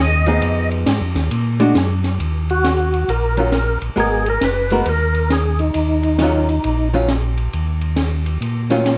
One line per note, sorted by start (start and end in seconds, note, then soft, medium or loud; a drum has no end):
0.00 0.41 D#2 loud
0.00 0.69 D#5 medium
0.26 0.84 F3 medium
0.26 0.84 B3 medium
0.26 0.84 D#4 medium
0.26 0.84 G#4 medium
0.26 ride soft
0.42 0.85 F2 medium
0.42 ride medium
0.71 ride soft
0.86 1.01 G#2 medium
0.86 snare medium
0.86 hi-hat pedal medium
0.86 ride medium
1.01 1.16 F2 medium
1.15 1.30 D#2 medium
1.15 snare soft
1.15 ride soft
1.31 1.74 A#2 medium
1.31 ride medium
1.60 1.74 G#3 medium
1.60 1.74 D4 medium
1.60 1.75 F#4 medium
1.60 ride soft
1.75 2.19 F#2 medium
1.75 snare medium
1.75 hi-hat pedal medium
1.75 ride medium
2.04 snare soft
2.04 ride soft
2.20 3.05 D#2 medium
2.20 ride medium
2.49 3.11 F#4 medium
2.49 ride soft
2.64 snare medium
2.64 hi-hat pedal medium
2.64 ride medium
2.94 ride soft
3.08 3.78 A#1 medium
3.08 3.78 A#4 medium
3.08 ride medium
3.37 3.51 D#3 medium
3.37 3.52 F#3 soft
3.37 3.52 C#4 medium
3.37 3.52 F4 medium
3.37 ride soft
3.52 snare medium
3.52 hi-hat pedal soft
3.52 ride medium
3.82 3.90 A#1 soft
3.82 ride soft
3.96 4.38 G#1 medium
3.96 4.23 G#3 medium
3.96 4.23 B3 medium
3.96 4.23 F#4 medium
3.96 4.28 G#4 medium
3.96 4.24 A#4 medium
3.96 ride soft
4.26 4.44 A#4 medium
4.26 ride soft
4.41 4.83 F#1 medium
4.41 4.89 B4 medium
4.41 snare medium
4.41 hi-hat pedal medium
4.41 ride medium
4.70 4.85 G#3 medium
4.70 4.85 B3 medium
4.70 4.85 F#4 medium
4.70 4.86 A#4 medium
4.70 ride soft
4.86 5.71 D#2 medium
4.86 5.33 A#4 medium
4.86 ride medium
5.15 ride soft
5.30 5.61 G#4 medium
5.30 snare medium
5.30 hi-hat pedal soft
5.30 ride medium
5.59 6.89 D#4 medium
5.59 ride soft
5.74 6.60 D#2 medium
5.74 ride medium
6.03 ride soft
6.18 6.46 D#3 medium
6.18 6.47 F#3 medium
6.18 6.47 C#4 medium
6.18 snare medium
6.18 hi-hat pedal medium
6.18 ride medium
6.23 6.47 F4 medium
6.49 ride soft
6.64 7.49 A#1 medium
6.64 ride medium
6.94 7.07 D#3 medium
6.94 7.07 F#3 medium
6.94 7.08 C#4 medium
6.94 7.08 F4 medium
6.94 ride soft
7.08 snare medium
7.08 hi-hat pedal medium
7.08 ride medium
7.37 ride soft
7.53 8.38 D#2 medium
7.53 ride medium
7.81 ride soft
7.96 snare medium
7.96 hi-hat pedal soft
7.96 ride medium
8.26 ride soft
8.41 8.98 A#2 medium
8.41 ride medium
8.70 8.98 D#3 medium
8.70 8.98 F#3 medium
8.70 8.98 C#4 medium
8.70 8.98 F4 medium
8.70 snare soft
8.70 ride soft
8.86 snare medium
8.86 hi-hat pedal medium
8.86 ride medium